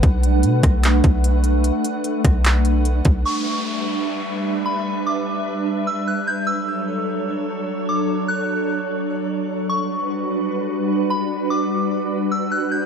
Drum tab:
HH |xxxxxxxx|xxxxxxxx|--------|--------|
CP |----x---|----x---|--------|--------|
SD |---r----|---r----|--------|--------|
BD |o--o-o--|---o---o|--------|--------|

HH |--------|--------|--------|--------|
CP |--------|--------|--------|--------|
SD |--------|--------|--------|--------|
BD |--------|--------|--------|--------|